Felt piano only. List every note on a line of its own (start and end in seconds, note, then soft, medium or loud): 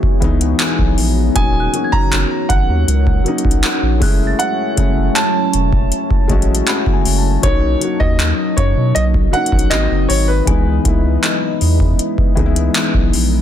0.00 0.20 E3 medium
0.00 0.21 G#3 medium
0.00 0.23 B3 medium
0.00 0.24 D#4 medium
0.00 1.38 E4 medium
0.20 1.09 E3 medium
0.20 1.10 G#3 medium
0.20 1.10 B3 medium
0.20 1.11 D#4 loud
0.20 0.40 E5 medium
0.41 0.59 F#5 medium
0.60 1.32 G#5 medium
1.34 1.64 F#3 medium
1.34 1.65 A#3 medium
1.34 1.66 C#4 medium
1.38 1.66 D#4 medium
1.72 2.90 F#3 medium
1.72 2.91 A#3 medium
1.72 2.92 C#4 medium
1.72 2.92 F#4 medium
3.24 4.01 F#3 medium
3.24 4.01 A#3 medium
3.24 4.01 C#4 medium
3.24 4.03 D#4 medium
4.00 4.62 G#3 loud
4.00 4.62 A3 medium
4.00 4.63 C#4 medium
4.00 4.63 E4 loud
4.76 5.94 G#3 medium
4.76 5.95 A3 medium
4.76 5.95 C#4 medium
4.76 5.96 E4 medium
6.28 7.17 G#3 medium
6.28 7.17 A3 medium
6.28 7.18 C#4 medium
6.28 7.19 F#4 loud
6.28 6.65 D#5 medium
6.68 6.91 F#5 medium
6.93 7.17 G#5 medium
7.18 7.42 A5 medium
7.42 7.72 F#3 medium
7.42 7.72 A#3 medium
7.42 7.73 C#4 medium
7.42 7.74 D#4 medium
7.79 8.98 F#3 medium
7.79 8.98 A#3 medium
7.79 8.99 C#4 medium
7.79 9.00 F#4 medium
9.31 9.68 F#3 medium
9.31 9.69 A#3 medium
9.31 9.72 C#4 medium
9.31 9.72 D#4 medium
9.70 10.31 F#3 medium
9.70 10.32 A#3 medium
9.70 10.32 C4 medium
9.70 10.33 D#4 medium
10.45 10.76 E3 medium
10.45 10.76 G#3 medium
10.45 10.77 B3 medium
10.49 10.78 D#4 medium
10.84 12.02 E3 medium
10.84 12.02 G#3 medium
10.84 12.03 B3 medium
10.84 12.04 E4 medium
12.35 13.24 E3 loud
12.35 13.25 G#3 medium
12.35 13.26 B3 medium
12.35 12.45 D#4 medium
12.46 13.29 E4 loud